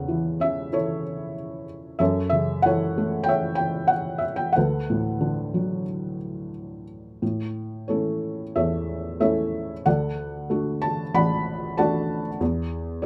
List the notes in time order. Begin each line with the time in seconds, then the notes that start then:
Already playing: E2 C#3 A4 C#5 F#5
0.08 E3
0.40 C#4 E5
0.73 E4 A4 C#5
1.99 F#2 A4 C#5 E5
2.30 C#3 E5
2.62 E3 A4 C#5 F#5
2.98 A3
3.24 G5
3.28 C#5 E5
3.55 G5
3.88 F#5
4.18 E5
4.36 G5
4.53 B4 F#5
4.57 D2 A4
4.90 A2
5.21 D3
5.54 F#3
7.22 A2
7.88 A3 C#4 E4 A4 C#5
8.56 E2 A4 C#5 E5
9.20 A3 C#4 E4 A4 C#5 E5
9.86 D2 A4 D5 F#5
10.50 A3 D4 F#4
10.82 A5
11.14 A1 D5 F#5 B5
11.78 A3 D4 F#4 D5 F#5 A5
12.41 E2
13.02 G#3 D5